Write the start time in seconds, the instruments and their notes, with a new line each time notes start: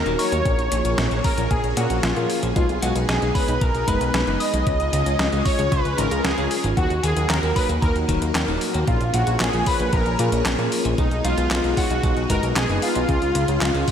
Already playing: string machine D#4 F#4 A#4, supersaw synth A#4, synth bell A#5
0.06 analog synth bass D#1, tine electric piano F#3 A#3 D#4 F#4 A#4, clean electric guitar A#3, closed hi-hat
0.19 supersaw synth C#5, synth bell C#6, open hi-hat
0.32 analog synth bass D#2, clean electric guitar A#3, closed hi-hat
0.45 analog synth bass A#1, clean electric guitar A#2, string machine F3 A#3 G#4 C#5, tine electric piano A#3 C#4 F4 G#4 A#4, kick, closed hi-hat
0.59 analog synth bass A#1, closed hi-hat
0.72 analog synth bass A#1, clean electric guitar A#2, closed hi-hat
0.85 analog synth bass A#1, tine electric piano A#3 C#4 F4 G#4 A#4, closed hi-hat
0.98 analog synth bass A#1, clean electric guitar A#2, snare, closed hi-hat
1.11 analog synth bass A#1, clean electric guitar F3, closed hi-hat
1.24 tine electric piano A#3 C#4 F4 G#4 C#5, supersaw synth A#4, synth bell A#5, kick, open hi-hat
1.38 analog synth bass A#1, clean electric guitar F3, closed hi-hat
1.50 analog synth bass A#1, clean electric guitar A#2, supersaw synth G#4, synth bell G#5, kick, closed hi-hat
1.64 analog synth bass A#1, closed hi-hat
1.77 analog synth bass A#2, clean electric guitar A#2, tine electric piano A#3 C#4 F4 G#4 A#4, supersaw synth F#4, synth bell F#5, closed hi-hat
1.90 analog synth bass A#1, closed hi-hat
2.03 analog synth bass A#1, clean electric guitar A#2, supersaw synth F4, synth bell F5, snare, closed hi-hat
2.16 analog synth bass A#2, clean electric guitar F3, tine electric piano A#3 C#4 F4 G#4 A#4, closed hi-hat
2.30 open hi-hat
2.43 analog synth bass A#1, clean electric guitar F3, closed hi-hat
2.56 analog synth bass B1, clean electric guitar G#3, tine electric piano G#3 B3 D#4 G#4 B4, string machine B3 D#4, supersaw synth F4, synth bell F5, kick, closed hi-hat
2.69 analog synth bass B1, closed hi-hat
2.82 analog synth bass B1, clean electric guitar G#3, supersaw synth F#4, synth bell F#5, closed hi-hat
2.96 analog synth bass B1, tine electric piano G#3 B3 D#4 G#4 B4, closed hi-hat
3.09 analog synth bass B1, clean electric guitar G#3, supersaw synth G#4, synth bell G#5, snare, closed hi-hat
3.22 analog synth bass B1, clean electric guitar D#4, closed hi-hat
3.34 tine electric piano G#3 B3 D#4 G#4 C#5, supersaw synth B4, synth bell B5, kick, open hi-hat
3.48 analog synth bass B1, clean electric guitar D#4, closed hi-hat
3.61 analog synth bass B1, clean electric guitar G#3, supersaw synth A#4, synth bell A#5, kick, closed hi-hat
3.75 analog synth bass B1, closed hi-hat
3.87 analog synth bass F#1, clean electric guitar G#3, tine electric piano G#3 B3 D#4 G#4 B4, supersaw synth B4, synth bell B5, kick, closed hi-hat
4.01 analog synth bass B1, closed hi-hat
4.14 analog synth bass B1, clean electric guitar G#3, supersaw synth B4, synth bell B5, snare, closed hi-hat
4.27 analog synth bass F#1, tine electric piano G#3 B3 D#4 G#4 B4, clean electric guitar D#4, closed hi-hat
4.40 supersaw synth D#5, synth bell D#6, open hi-hat
4.54 analog synth bass B1, clean electric guitar D#4, closed hi-hat
4.67 analog synth bass C#2, clean electric guitar C#3, tine electric piano G#3 C#4 F4 G#4 C#5, string machine C#4 F4 G#4, kick, closed hi-hat
4.80 analog synth bass C#2, closed hi-hat
4.93 analog synth bass C#2, clean electric guitar C#3, closed hi-hat
5.06 analog synth bass C#2, tine electric piano G#3 C#4 F4 G#4 C#5, closed hi-hat
5.19 analog synth bass C#2, clean electric guitar C#3, snare, closed hi-hat
5.32 analog synth bass C#2, clean electric guitar G#3, closed hi-hat
5.45 tine electric piano G#3 C#4 F4 G#4 D#5, supersaw synth C#5, synth bell C#6, kick, open hi-hat
5.59 analog synth bass C#2, clean electric guitar G#3, closed hi-hat
5.72 analog synth bass C#2, clean electric guitar C#3, supersaw synth B4, synth bell B5, kick, closed hi-hat
5.85 analog synth bass C#2, closed hi-hat
5.98 analog synth bass G#1, clean electric guitar C#3, tine electric piano G#3 C#4 F4 G#4 D#5, supersaw synth A#4, synth bell A#5, closed hi-hat
6.11 analog synth bass C#2, tine electric piano G#3 C#4 F4 G#4 D#5, closed hi-hat
6.24 analog synth bass C#2, clean electric guitar C#3, supersaw synth G#4, synth bell G#5, snare, closed hi-hat
6.38 analog synth bass C#2, clean electric guitar G#3, tine electric piano G#3 C#4 F4 G#4 C#5, closed hi-hat
6.51 open hi-hat
6.64 analog synth bass G#1, clean electric guitar G#3, closed hi-hat
6.77 analog synth bass D#2, clean electric guitar D#3, tine electric piano F#3 A#3 D#4 F#4 A#4, string machine A#3 D#4 F#4, supersaw synth F#4, synth bell F#5, kick, closed hi-hat
6.90 analog synth bass D#2, closed hi-hat
7.03 analog synth bass D#2, clean electric guitar D#3, supersaw synth G#4, synth bell G#5, closed hi-hat
7.17 analog synth bass D#2, tine electric piano F#3 A#3 D#4 F#4 A#4, closed hi-hat
7.29 analog synth bass D#2, clean electric guitar D#3, supersaw synth A#4, synth bell A#5, snare, clap, closed hi-hat
7.43 analog synth bass D#2, clean electric guitar A#3, closed hi-hat
7.56 tine electric piano F#3 A#3 D#4 F#4 C#5, supersaw synth B4, synth bell B5, kick, open hi-hat
7.69 analog synth bass D#2, clean electric guitar A#3, closed hi-hat
7.82 analog synth bass D#2, clean electric guitar D#3, supersaw synth A#4, synth bell A#5, kick, closed hi-hat
7.96 analog synth bass D#2, closed hi-hat
8.09 analog synth bass D#1, clean electric guitar D#3, tine electric piano F#3 A#3 D#4 F#4 A#4, kick, closed hi-hat
8.22 analog synth bass D#2, closed hi-hat
8.35 analog synth bass D#2, clean electric guitar D#3, snare, clap, closed hi-hat
8.48 analog synth bass D#1, tine electric piano F#3 A#3 D#4 F#4 A#4, clean electric guitar A#3, closed hi-hat
8.61 open hi-hat
8.74 analog synth bass D#2, clean electric guitar A#3, closed hi-hat
8.87 analog synth bass A#1, clean electric guitar A#2, string machine F3 A#3 G#4 C#5, tine electric piano A#3 C#4 F4 G#4 A#4, supersaw synth F4, synth bell F5, kick, closed hi-hat
9.01 analog synth bass A#1, closed hi-hat
9.14 analog synth bass A#1, clean electric guitar A#2, supersaw synth F#4, synth bell F#5, closed hi-hat
9.27 analog synth bass A#1, tine electric piano A#3 C#4 F4 G#4 A#4, closed hi-hat
9.40 analog synth bass A#1, clean electric guitar A#2, supersaw synth G#4, synth bell G#5, snare, clap, closed hi-hat
9.53 analog synth bass A#1, clean electric guitar F3, closed hi-hat
9.66 tine electric piano A#3 C#4 F4 G#4 C#5, supersaw synth B4, synth bell B5, kick, open hi-hat
9.80 analog synth bass A#1, clean electric guitar F3, closed hi-hat
9.93 analog synth bass A#1, clean electric guitar A#2, supersaw synth A#4, synth bell A#5, kick, closed hi-hat
10.06 analog synth bass A#1, closed hi-hat
10.19 clean electric guitar A#2, analog synth bass A#2, tine electric piano A#3 C#4 F4 G#4 A#4, closed hi-hat
10.32 analog synth bass A#1, closed hi-hat
10.45 analog synth bass A#1, clean electric guitar A#2, snare, clap, closed hi-hat
10.59 analog synth bass A#2, clean electric guitar F3, tine electric piano A#3 C#4 F4 G#4 A#4, closed hi-hat
10.72 open hi-hat
10.85 analog synth bass A#1, clean electric guitar F3, closed hi-hat
10.98 analog synth bass B1, tine electric piano G#3 B3 D#4 G#4 B4, clean electric guitar G#3, string machine B3 D#4, supersaw synth D#4, synth bell D#5, kick, closed hi-hat
11.11 analog synth bass B1, closed hi-hat
11.24 analog synth bass B1, clean electric guitar G#3, supersaw synth F4, synth bell F5, closed hi-hat
11.38 analog synth bass B1, tine electric piano G#3 B3 D#4 G#4 B4, closed hi-hat
11.51 analog synth bass B1, clean electric guitar G#3, snare, clap, closed hi-hat
11.64 analog synth bass B1, clean electric guitar D#4, closed hi-hat
11.77 tine electric piano G#3 B3 D#4 G#4 C#5, supersaw synth F#4, synth bell F#5, kick, open hi-hat
11.90 analog synth bass B1, clean electric guitar D#4, closed hi-hat
12.03 analog synth bass B1, clean electric guitar G#3, kick, closed hi-hat
12.17 analog synth bass B1, closed hi-hat
12.30 analog synth bass F#1, clean electric guitar G#3, tine electric piano G#3 B3 D#4 G#4 B4, supersaw synth A#4, synth bell A#5, kick, closed hi-hat
12.43 analog synth bass B1, closed hi-hat
12.56 analog synth bass B1, clean electric guitar G#3, supersaw synth G#4, synth bell G#5, snare, clap, closed hi-hat
12.69 analog synth bass F#1, tine electric piano G#3 B3 D#4 G#4 B4, clean electric guitar D#4, closed hi-hat
12.82 supersaw synth F4, synth bell F5, open hi-hat
12.95 analog synth bass B1, clean electric guitar D#4, closed hi-hat
13.09 analog synth bass C#2, clean electric guitar C#3, tine electric piano G#3 C#4 F4 G#4 C#5, string machine C#4 F4, kick, closed hi-hat
13.22 analog synth bass C#2, closed hi-hat
13.35 analog synth bass C#2, clean electric guitar C#3, closed hi-hat
13.48 analog synth bass C#2, tine electric piano G#3 C#4 F4 G#4 C#5, closed hi-hat
13.61 analog synth bass C#2, clean electric guitar C#3, snare, clap, closed hi-hat
13.75 analog synth bass C#2, clean electric guitar G#3, closed hi-hat
13.88 tine electric piano G#3 C#4 F4 G#4 D#5, kick, open hi-hat